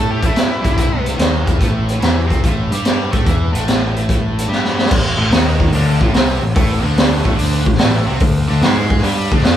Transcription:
Already playing: A2 A3 A4
0.09 E4 G4
0.21 A1 A2 A3 C#4, kick, closed hi-hat
0.26 E4
0.35 muted overdriven electric guitar stroke, muted picked electric bass stroke, snare, closed hi-hat
0.62 G1 G2 G3, kick, closed hi-hat
0.76 C2 C3 C4, kick, closed hi-hat
1.06 closed hi-hat
1.16 D#2 D#3 D#4, snare, closed hi-hat
1.45 E2 E3 E4, kick, closed hi-hat
1.58 A1 A2 A3, kick, closed hi-hat
1.89 closed hi-hat
2.00 E2 E3 E4, snare, closed hi-hat
2.27 C2 C3 C4, kick
2.31 closed hi-hat
2.43 A1 A2 A3, kick, closed hi-hat
2.71 G2 G3 G4, closed hi-hat
2.85 snare, closed hi-hat
3.11 A2 A3 A4, kick, closed hi-hat
3.25 E2 E3 E4, kick, closed hi-hat
3.52 A1 A2 A3, closed hi-hat
3.68 snare, closed hi-hat
3.96 closed hi-hat
4.09 kick, closed hi-hat
4.38 closed hi-hat
4.48 G2 G3 G4
4.52 snare
4.65 snare
4.79 snare
4.86 snare
4.91 A1 A2, kick, crash
5.17 A1 A2 A3
5.30 D#2 D#3 D#4, snare, open hi-hat
5.60 kick
5.72 D2 D3 D4, open hi-hat
6.01 A1 A2 A3, kick
6.14 C2 C3 C4, snare, open hi-hat
6.42 A1 A2
6.55 A1 A2 A3, kick, open hi-hat
6.83 D2 D3 D4
6.97 snare, open hi-hat
7.23 A1 A2 A3, kick
7.35 D3 D4, open hi-hat
7.40 D2
7.65 A1 A2, kick
7.74 snare
7.78 A1 A2 A3, snare, open hi-hat
8.06 C2 C3 C4
8.19 D2 D3, kick, open hi-hat
8.48 D2 D3 D4
8.62 G#2 G#3 G#4, snare, open hi-hat
8.90 kick
8.98 snare
9.03 G2 G3 G4, open hi-hat
9.32 D2 D3 D4, kick
9.39 snare
9.44 F2 F3 F4, snare, open hi-hat

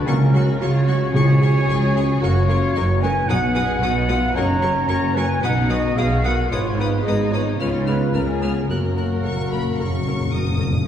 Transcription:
Already playing: F#4
0.06 C#2 C#3 F#3 A#3 C#4 F#4 G#4 A#4 C#6
0.33 F#3 C#4 F#4 C#6
0.59 C#2 C#3 F#3 F4 F#4 C#5 C#6
0.87 F#3 C#4 F#4 C#6
1.13 C#2 C#3 F3 G#3 F4 G#4 C#6
1.40 F3 G#4 C#6
1.67 C#2 C#3 F3 G#4 C#6
1.95 F3 C#4 G#4 C#6
2.21 F#1 F#2 F#3 A#3 F#4 A#4 C#5 C#6
2.49 F#3 A#3 F4 A#4 C#6
2.75 F#1 F#2 F#3 D#4 F#4 A#4 C#6
3.01 F#3 A#3 C#4 A#4 B4 G#5 C#6
3.28 B1 B2 F#3 B3 D#4 B4 F#5 D#6
3.55 F#3 B3 G#4 B4 D#6
3.81 B1 B2 F#3 F#4 B4 D#6
4.09 F#3 F4 B4 D#6
4.35 F#1 F#2 F#3 A#3 C#4 D#4 A#4 C#5 A#5 C#6
4.62 F#3 A#3 C#4 A#4 C#6
4.88 F#1 F#2 F#3 F#4 A#4 C#5 A#5 C#6
5.14 F#3 A#4 B4 G#5 C#6
5.18 A#3 G#5
5.41 B1 B2 F#3 B3 D#4 B4 F#5 D#6
5.45 F#5
5.69 F#3 B3 F#4 B4 D#5 D#6
5.73 D#5
5.97 B1 B2 F#3 F#4 G#4 B4 F5 D#6
6.23 F#3 B3 A#4 B4 F#5 D#6
6.50 G#1 G#2 G#3 B3 D#4 F4 B4 C#5 D#6
6.77 G#3 B3 D#4 B4 D#6
7.02 G#1 G#2 G#3 D#4 G#4 D#5
7.07 B3 D#4 B4 D#6
7.31 G#3 B3 F4 B4 C#5 D#6
7.58 C#2 C#3 G#3 B3 F4 B4 C#5 F6
7.84 G#3 D#4 B4 F6
7.88 B3
8.13 C#2 C#3 G#3 C#4 G#4 A#4 B4 F6
8.40 G#3 B3 G#4 B4 F6
8.68 F#1 F#2 F#3 A#3 F#4 A#4 F#6
8.92 F#2
8.96 F#2 F#3 A#3 A#4 F#6
9.15 F#2
9.22 F#1 F#2 F#3 F#4 A#4 C#6
9.30 F#2
9.38 F#2
9.45 F#2
9.51 F#2 F#3 A#3 A#4 B5
9.60 F#2
9.67 F#2
9.75 F#1 F#2 C#3 C#6
9.79 F#2 F#3 A#4
9.90 F#2
9.98 F#2
10.06 F#2 F#3 A#3 A#4
10.13 F#2
10.20 F#2
10.28 F#2
10.32 F#1 F#2 F#3 F#4 A#4 D#6
10.43 F#2
10.50 F#2
10.57 F#2 F#3 A#3 A#4
10.65 F#2
10.73 F#2

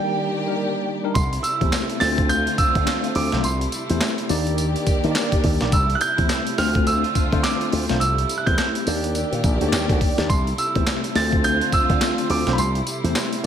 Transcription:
Already playing: D#3 G3 A#3 D4 D#4 G4 A#4 D5 G5
0.47 G3 D4 D#4 A#4
1.04 G3 D4 D#4 A#4
1.14 C2 C3 G3 A3 E4 C6, kick, closed hi-hat, tambourine
1.33 closed hi-hat
1.43 E6, closed hi-hat, tambourine
1.61 E2 A3 C4 E4 G4 C5, kick, closed hi-hat
1.72 snare, clap, closed hi-hat, tambourine
1.90 closed hi-hat
2.00 D2 D3 A3 C4 D4 F4 C5 A6, snare, open hi-hat, tambourine
2.18 kick, closed hi-hat
2.29 G6, closed hi-hat, tambourine
2.47 closed hi-hat
2.58 E6, muted slap bass stroke, kick, closed hi-hat, tambourine
2.75 D3 A3 C4 D4 F4 C5, kick, closed hi-hat
2.87 snare, clap, closed hi-hat, tambourine
3.04 closed hi-hat
3.15 D2 D6, open hi-hat
3.32 B1 A3 C4 D4 F4 C5, snare, closed hi-hat
3.44 C2 C3 G3 E4 C6, closed hi-hat, tambourine
3.61 closed hi-hat
3.72 closed hi-hat, tambourine
3.89 E2 A3 C4 E4 G4 C5, closed hi-hat
4.01 snare, clap, closed hi-hat, tambourine
4.18 closed hi-hat
4.29 D#2 D#3 A#3 D4 D#4 G4 D5, open hi-hat, tambourine
4.47 closed hi-hat
4.58 closed hi-hat, tambourine
4.76 closed hi-hat
4.86 muted slap bass stroke, kick, closed hi-hat, tambourine
5.04 D#3 A#3 D4 D#4 G4 C5, closed hi-hat
5.12 D5, snare, closed hi-hat, tambourine
5.16 clap
5.32 kick, closed hi-hat
5.44 D#2, kick, open hi-hat
5.61 A#1 A#3 D4 D#4 G4 D5, snare, closed hi-hat
5.72 C2 C3 G3 A3 E4 E6, kick, closed hi-hat, tambourine
5.90 closed hi-hat
5.95 F#6
6.01 G6, closed hi-hat, tambourine
6.18 E2 A3 C4 E4 G4 C5, kick, closed hi-hat
6.29 snare, clap, closed hi-hat, tambourine
6.47 closed hi-hat
6.58 D2 D3 A3 C4 D4 F4 C5 F6, snare, open hi-hat, tambourine
6.75 kick, closed hi-hat
6.87 E6, closed hi-hat, tambourine
7.04 closed hi-hat
7.15 muted slap bass stroke, kick, closed hi-hat, tambourine
7.32 D3 A3 C4 D4 F4 C5, kick, closed hi-hat
7.43 D6, snare, clap, closed hi-hat, tambourine
7.61 closed hi-hat
7.72 D2, open hi-hat
7.89 B1 A3 C4 D4 F4 C5, snare, closed hi-hat
8.00 C2 C3 G3 E4 E6, closed hi-hat, tambourine
8.18 closed hi-hat
8.29 closed hi-hat, tambourine
8.38 F#6
8.46 E2 A3 C4 E4 G4 C5 G6, kick, closed hi-hat
8.58 snare, clap, closed hi-hat, tambourine
8.75 closed hi-hat
8.86 D#2 D#3 A#3 D4 D#4 G4 D5, open hi-hat, tambourine
9.04 closed hi-hat
9.15 closed hi-hat, tambourine
9.32 A#2, closed hi-hat
9.44 A#1, kick, closed hi-hat, tambourine
9.61 D2 A#3 D4 D#4 G4 C#5, closed hi-hat
9.69 D#2 D5, tambourine
9.73 snare, clap, closed hi-hat
9.89 D2, kick, closed hi-hat
10.01 kick, open hi-hat
10.18 D#2 A#3 D4 D#4 G4 D5, snare, closed hi-hat
10.29 C2 C3 G3 A3 E4 C6, kick, closed hi-hat, tambourine
10.47 closed hi-hat
10.58 E6, closed hi-hat, tambourine
10.75 E2 A3 C4 D#4 G4 C5, kick, closed hi-hat
10.82 E4
10.87 snare, clap, closed hi-hat, tambourine
11.04 closed hi-hat
11.15 D2 D3 A3 C4 D4 F4 C5 A6, snare, open hi-hat, tambourine
11.33 kick, closed hi-hat
11.44 G6, closed hi-hat, tambourine
11.61 closed hi-hat
11.72 E6, muted slap bass stroke, kick, closed hi-hat, tambourine
11.89 D3 A3 C4 D4 F4 C5, kick, closed hi-hat
12.01 snare, clap, closed hi-hat, tambourine
12.18 closed hi-hat
12.30 D2 D6, open hi-hat
12.47 B1 A3 C4 D4 F4 C5, snare, closed hi-hat
12.53 B5
12.58 C2 C3 G3 E4 C6, closed hi-hat, tambourine
12.75 closed hi-hat
12.87 closed hi-hat, tambourine
13.04 E2 A3 C4 E4 G4 C5, closed hi-hat
13.15 snare, clap, closed hi-hat, tambourine
13.33 closed hi-hat

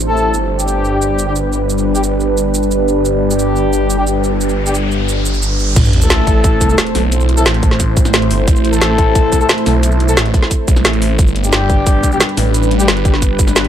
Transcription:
Already playing: A1 A3 D4 E4 G4 C5
0.00 shaker
0.09 A3 E4 A4
0.17 shaker
0.34 G1 G3 D4 B4, shaker
0.45 B4
0.53 G4
0.59 G3 D4 G4, shaker
0.68 shaker
0.85 shaker
1.02 shaker
1.19 shaker
1.27 G3 D4 G4
1.36 shaker
1.53 shaker
1.70 shaker
1.78 shaker
1.95 G3 D4 G4, shaker
2.03 shaker
2.20 shaker
2.37 shaker
2.54 shaker
2.63 shaker
2.71 shaker
2.88 shaker
3.05 riser, shaker
3.31 G3 D4 G4, shaker
3.39 shaker
3.56 shaker
3.73 shaker
3.90 shaker
3.98 G3 D4 G4
4.07 shaker
4.24 shaker
4.41 shaker
4.49 shaker
4.66 G3 D4 G4, shaker
4.75 shaker
4.92 shaker
5.09 shaker
5.25 shaker
5.34 shaker
5.42 shaker
5.59 shaker
5.76 A1 A3 E4 C5, kick, closed hi-hat, crash, sub drop, shaker
5.85 shaker
5.93 closed hi-hat
6.02 A3 E4 A4, shaker
6.10 snare, closed hi-hat, shaker
6.27 kick, closed hi-hat, shaker
6.44 kick, closed hi-hat, shaker
6.61 C2, kick, closed hi-hat, shaker
6.70 A3 E4 A4, shaker
6.78 snare, closed hi-hat, shaker
6.87 closed hi-hat
6.95 B1, snare, open hi-hat, shaker
7.12 closed hi-hat, shaker
7.20 shaker
7.29 closed hi-hat
7.37 A3 E4 A4, shaker
7.46 A1, snare, closed hi-hat, shaker
7.54 closed hi-hat
7.63 kick, closed hi-hat, shaker
7.71 snare
7.80 kick, closed hi-hat, shaker
7.97 kick, closed hi-hat, shaker
8.05 snare, shaker
8.14 snare, closed hi-hat, shaker
8.22 closed hi-hat
8.31 G1, open hi-hat, shaker
8.48 A1, kick, closed hi-hat, shaker
8.56 shaker
8.65 closed hi-hat
8.73 A3 E4 A4, shaker
8.81 snare, closed hi-hat, shaker
8.98 kick, closed hi-hat, shaker
9.15 kick, closed hi-hat, shaker
9.32 C2, kick, closed hi-hat, shaker
9.41 A3 E4 A4, shaker
9.49 snare, closed hi-hat, shaker
9.58 closed hi-hat
9.66 B1, snare, open hi-hat, shaker
9.83 closed hi-hat, shaker
9.92 shaker
10.00 closed hi-hat
10.09 A3 E4 A4, shaker
10.17 A1, snare, closed hi-hat, shaker
10.26 closed hi-hat
10.34 kick, closed hi-hat, shaker
10.42 snare
10.51 kick, closed hi-hat, shaker
10.68 B1, kick, closed hi-hat, shaker
10.76 snare, shaker
10.85 A1, snare, closed hi-hat, shaker
10.93 closed hi-hat
11.02 open hi-hat, shaker
11.19 G1 G3 D4 B4, kick, closed hi-hat, shaker
11.27 shaker
11.36 closed hi-hat
11.44 G3 D4 G4, shaker
11.53 snare, closed hi-hat, shaker
11.70 kick, closed hi-hat, shaker
11.87 kick, closed hi-hat, shaker
12.03 B1, kick, closed hi-hat, shaker
12.12 G3 D4 G4, shaker
12.20 snare, closed hi-hat, shaker
12.29 closed hi-hat
12.37 A1, snare, open hi-hat, shaker
12.54 closed hi-hat, shaker
12.63 shaker
12.71 closed hi-hat
12.80 G3 D4 G4, shaker
12.88 G1, snare, closed hi-hat, shaker
12.97 closed hi-hat
13.05 kick, closed hi-hat, shaker
13.14 snare
13.22 kick, closed hi-hat, shaker
13.39 kick, closed hi-hat, shaker
13.48 snare, shaker
13.56 snare, closed hi-hat, shaker
13.65 closed hi-hat

